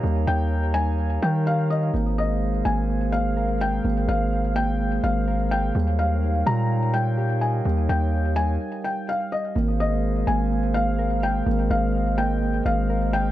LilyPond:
<<
  \new Staff \with { instrumentName = "Felt piano" } { \time 4/4 \key aes \major \tempo 4 = 126 r8 g''4 aes''4 g''8 f''8 ees''8 | r8 ees''4 aes''4 f''4 g''8 | r8 f''4 g''4 f''4 g''8 | r8 f''4 bes''4 g''4 aes''8 |
r8 g''4 aes''4 g''8 f''8 ees''8 | r8 ees''4 aes''4 f''4 g''8 | r8 f''4 g''4 f''4 g''8 | }
  \new Staff \with { instrumentName = "Glass harmonica" } { \time 4/4 \key aes \major << { <f'' bes''>1 | f''1~ | f''1 | g''1~ |
g''2 r2 | f''1 | ees''1 | } \\ { <ees' bes' des''>1 | <aes aes' bes' c''>1~ | <aes aes' bes' c''>1 | <ees' des''>1~ |
<ees' des''>2 r2 | <aes aes' bes' c''>1~ | <aes aes' bes' c''>1 | } >> }
  \new Staff \with { instrumentName = "Synth keys" } { \time 4/4 \key aes \major <g g' ees''>8 g4 g8 g8 g8 g'8 ees''8 | bes8 bes4 bes8 bes8 bes8 bes'8 f''8 | bes8 bes4 bes8 bes8 bes8 bes'8 f''8 | g8 g4 g8 g8 g8 g'8 ees''8 |
g8 g4 g2~ g8 | bes8 bes4 bes8 bes8 bes8 bes'8 f''8 | bes8 bes4 bes8 bes8 bes8 bes'8 f''8 | }
  \new Staff \with { instrumentName = "808-style bass" } { \clef bass \time 4/4 \key aes \major ees,8 ees,2 ees4. | aes,,4. aes,,2~ aes,,8 | aes,,8 aes,,2 aes,,4. | ees,4. bes,2~ bes,8 |
ees,8 ees,4. r2 | aes,,4. aes,,2~ aes,,8 | aes,,8 aes,,2 aes,,4. | }
>>